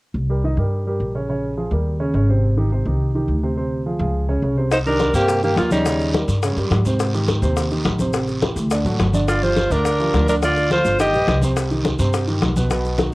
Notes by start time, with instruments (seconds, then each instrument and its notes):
0.14 upright bass C2
0.29 grand piano G3 G4 A#4
0.44 grand piano D#3 D#4 D#5
0.57 upright bass G2, grand piano G3 G4 A#4
0.87 grand piano G3 G4 A#4
1.00 upright bass A#1
1.14 grand piano C#3 C#4 C#5
1.29 grand piano C#3 C#4 C#5
1.57 grand piano F3 F4 G#4
1.71 upright bass D#2, grand piano G3 G4 A#4
2.00 grand piano C#3 C#4 C#5
2.14 upright bass G#1, grand piano C#3 C#4 C#5
2.29 grand piano C3 C4 C5
2.57 grand piano D#3 D#4 G4
2.72 grand piano C3 C4 C5
2.85 upright bass C2, grand piano D#3 D#4 G4
3.15 grand piano D#3 D#4 G4
3.28 upright bass D2
3.43 grand piano C3 C4 C5
3.57 grand piano C3 C4 C5
3.86 grand piano F3 F4 G#4
4.00 upright bass C#2, grand piano F3 F4 G#4
4.29 grand piano C#3 C#4 C#5
4.42 upright bass C2, grand piano C#3 C#4 C#5
4.57 grand piano C3 C4 C5
4.71 tenor saxophone D#4, alto saxophone C5, high bongo, high conga, long guiro, maracas
4.86 grand piano D#3 D#4 G4, tenor saxophone D4, alto saxophone A#4, high conga, maracas
5.00 high bongo, high conga, short guiro, maracas
5.14 upright bass G2, grand piano C3 C4 C5, tenor saxophone A#3, alto saxophone G4, short guiro, maracas
5.28 high bongo, high conga, long guiro, maracas
5.43 grand piano D#3 D#4 G4, tenor saxophone A#3, alto saxophone G4, high conga, maracas
5.56 upright bass D#2, tenor saxophone A#3, alto saxophone F4, high bongo, low bongo, high conga, short guiro, maracas
5.71 grand piano C#3 C#4 C#5, tenor saxophone G3, alto saxophone D#4, high conga, short guiro, maracas
5.86 grand piano C#3 C#4 C#5, high bongo, high conga, long guiro, maracas
6.00 high bongo, high conga, maracas
6.14 grand piano G3 G4 A#4, high bongo, high conga, short guiro, maracas
6.28 upright bass G2, high bongo, high conga, short guiro, maracas
6.43 grand piano C#3 C#4 C#5, high bongo, high conga, long guiro, maracas
6.56 upright bass G2, grand piano G3 G4 A#4, high bongo, high conga, maracas
6.70 upright bass G#2, high bongo, low bongo, high conga, short guiro, maracas
6.85 grand piano C3 C4 C5, high conga, short guiro, maracas
6.99 high bongo, high conga, long guiro, maracas
7.14 grand piano D#3 D#4 G4, high conga, maracas
7.28 high bongo, high conga, short guiro, maracas
7.42 upright bass D#2, grand piano C3 C4 C5, short guiro, maracas
7.57 high bongo, high conga, long guiro, maracas
7.71 grand piano D#3 D#4 G4, high conga, maracas
7.85 upright bass A1, high bongo, low bongo, high conga, short guiro, maracas
7.99 grand piano C3 C4 C5, high conga, short guiro, maracas
8.13 grand piano C3 C4 C5, high bongo, high conga, long guiro, maracas
8.28 high bongo, high conga, maracas
8.42 grand piano E3 E4 G4, high bongo, high conga, short guiro, maracas
8.56 upright bass D2, high bongo, high conga, short guiro, maracas
8.71 grand piano D3 D4 D5, high bongo, high conga, long guiro, maracas
8.84 upright bass A1, grand piano F#3 F#4 A4, high bongo, high conga, maracas
8.99 upright bass G1, high bongo, low bongo, high conga, short guiro, maracas
9.13 grand piano D3 D4 D5, high conga, short guiro, maracas
9.28 tenor saxophone F4, alto saxophone D5, high bongo, high conga, long guiro, maracas
9.42 grand piano F3 F4 G4, tenor saxophone F4, alto saxophone C5, high conga, maracas
9.56 high bongo, high conga, short guiro, maracas
9.70 upright bass D2, grand piano D3 D4 D5, tenor saxophone D4, alto saxophone A#4, short guiro, maracas
9.85 high bongo, high conga, long guiro, maracas
10.00 grand piano F3 F4 G4, high conga, maracas
10.13 upright bass D2, high bongo, low bongo, high conga, short guiro, maracas
10.28 grand piano D3 D4 D5, tenor saxophone D4, alto saxophone A#4, high conga, short guiro, maracas
10.42 grand piano D3 D4 D5, tenor saxophone F4, alto saxophone D5, high bongo, high conga, long guiro, maracas
10.56 high bongo, high conga, maracas
10.71 grand piano F3 F4 A4, tenor saxophone F4, alto saxophone C5, high bongo, high conga, short guiro, maracas
10.85 upright bass G1, high bongo, high conga, short guiro, maracas
10.99 grand piano D#3 D#4 D#5, tenor saxophone G4, alto saxophone D#5, high bongo, high conga, long guiro, maracas
11.13 upright bass A#1, grand piano G3 G4 B4, high bongo, high conga, maracas
11.27 upright bass C2, high bongo, low bongo, high conga, short guiro, maracas
11.41 grand piano C3 C4 C5, high conga, short guiro, maracas
11.56 high bongo, high conga, long guiro, maracas
11.70 grand piano D#3 D#4 G4, high conga, maracas
11.85 high bongo, high conga, short guiro, maracas
11.99 upright bass G2, grand piano C3 C4 C5, short guiro, maracas
12.13 high bongo, high conga, long guiro, maracas
12.27 grand piano D#3 D#4 G4, high conga, maracas
12.41 upright bass B1, high bongo, low bongo, high conga, short guiro, maracas
12.56 grand piano B2 B3 B4, high conga, short guiro, maracas
12.70 grand piano B2 B3 B4, high bongo, high conga, long guiro, maracas
12.84 high bongo, high conga, maracas
12.98 grand piano D#3 D#4 F#4, high bongo, high conga, short guiro, maracas